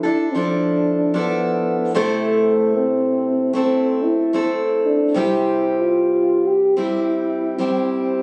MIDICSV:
0, 0, Header, 1, 3, 480
1, 0, Start_track
1, 0, Tempo, 804290
1, 1161, Time_signature, 4, 2, 24, 8
1, 4909, End_track
2, 0, Start_track
2, 0, Title_t, "French horn"
2, 0, Program_c, 0, 60
2, 25, Note_on_c, 0, 64, 75
2, 184, Note_on_c, 0, 60, 60
2, 193, Note_off_c, 0, 64, 0
2, 219, Note_on_c, 0, 62, 76
2, 228, Note_off_c, 0, 60, 0
2, 686, Note_off_c, 0, 62, 0
2, 690, Note_on_c, 0, 59, 70
2, 1141, Note_off_c, 0, 59, 0
2, 1166, Note_on_c, 0, 57, 72
2, 1646, Note_on_c, 0, 60, 83
2, 1655, Note_off_c, 0, 57, 0
2, 2114, Note_off_c, 0, 60, 0
2, 2117, Note_on_c, 0, 60, 80
2, 2414, Note_on_c, 0, 64, 78
2, 2423, Note_off_c, 0, 60, 0
2, 2696, Note_off_c, 0, 64, 0
2, 2900, Note_on_c, 0, 62, 76
2, 3084, Note_on_c, 0, 64, 75
2, 3093, Note_off_c, 0, 62, 0
2, 3466, Note_on_c, 0, 65, 81
2, 3475, Note_off_c, 0, 64, 0
2, 3860, Note_on_c, 0, 67, 75
2, 3869, Note_off_c, 0, 65, 0
2, 4043, Note_off_c, 0, 67, 0
2, 4049, Note_on_c, 0, 64, 80
2, 4502, Note_off_c, 0, 64, 0
2, 4523, Note_on_c, 0, 60, 64
2, 4909, Note_off_c, 0, 60, 0
2, 4909, End_track
3, 0, Start_track
3, 0, Title_t, "Steel-string acoustic guitar"
3, 0, Program_c, 1, 25
3, 19, Note_on_c, 1, 69, 38
3, 27, Note_on_c, 1, 64, 31
3, 31, Note_on_c, 1, 62, 26
3, 202, Note_off_c, 1, 69, 0
3, 205, Note_off_c, 1, 62, 0
3, 206, Note_off_c, 1, 64, 0
3, 207, Note_on_c, 1, 53, 47
3, 213, Note_on_c, 1, 62, 46
3, 217, Note_on_c, 1, 64, 51
3, 220, Note_on_c, 1, 69, 50
3, 672, Note_off_c, 1, 53, 0
3, 673, Note_off_c, 1, 62, 0
3, 679, Note_on_c, 1, 53, 40
3, 680, Note_on_c, 1, 62, 46
3, 682, Note_off_c, 1, 69, 0
3, 688, Note_off_c, 1, 64, 0
3, 689, Note_on_c, 1, 69, 54
3, 690, Note_on_c, 1, 64, 51
3, 1160, Note_off_c, 1, 53, 0
3, 1160, Note_off_c, 1, 62, 0
3, 1161, Note_on_c, 1, 48, 64
3, 1165, Note_off_c, 1, 69, 0
3, 1165, Note_on_c, 1, 57, 60
3, 1169, Note_on_c, 1, 60, 66
3, 1170, Note_off_c, 1, 64, 0
3, 1172, Note_on_c, 1, 64, 69
3, 1174, Note_on_c, 1, 69, 78
3, 2102, Note_off_c, 1, 57, 0
3, 2109, Note_on_c, 1, 57, 50
3, 2115, Note_off_c, 1, 60, 0
3, 2117, Note_off_c, 1, 64, 0
3, 2117, Note_on_c, 1, 60, 50
3, 2118, Note_off_c, 1, 69, 0
3, 2119, Note_on_c, 1, 64, 49
3, 2121, Note_off_c, 1, 48, 0
3, 2125, Note_on_c, 1, 69, 57
3, 2578, Note_off_c, 1, 57, 0
3, 2584, Note_off_c, 1, 60, 0
3, 2584, Note_off_c, 1, 64, 0
3, 2585, Note_on_c, 1, 57, 44
3, 2591, Note_on_c, 1, 64, 45
3, 2592, Note_off_c, 1, 69, 0
3, 2592, Note_on_c, 1, 60, 52
3, 2599, Note_on_c, 1, 69, 55
3, 3070, Note_on_c, 1, 48, 59
3, 3073, Note_off_c, 1, 57, 0
3, 3073, Note_off_c, 1, 60, 0
3, 3076, Note_on_c, 1, 55, 57
3, 3077, Note_off_c, 1, 64, 0
3, 3080, Note_off_c, 1, 69, 0
3, 3080, Note_on_c, 1, 60, 60
3, 3089, Note_on_c, 1, 67, 70
3, 4031, Note_off_c, 1, 60, 0
3, 4036, Note_off_c, 1, 55, 0
3, 4037, Note_off_c, 1, 48, 0
3, 4038, Note_on_c, 1, 55, 44
3, 4038, Note_on_c, 1, 60, 51
3, 4044, Note_off_c, 1, 67, 0
3, 4046, Note_on_c, 1, 64, 53
3, 4047, Note_on_c, 1, 67, 50
3, 4519, Note_off_c, 1, 55, 0
3, 4521, Note_off_c, 1, 60, 0
3, 4525, Note_off_c, 1, 64, 0
3, 4525, Note_off_c, 1, 67, 0
3, 4526, Note_on_c, 1, 55, 43
3, 4530, Note_on_c, 1, 60, 42
3, 4537, Note_on_c, 1, 64, 49
3, 4537, Note_on_c, 1, 67, 46
3, 4909, Note_off_c, 1, 55, 0
3, 4909, Note_off_c, 1, 60, 0
3, 4909, Note_off_c, 1, 64, 0
3, 4909, Note_off_c, 1, 67, 0
3, 4909, End_track
0, 0, End_of_file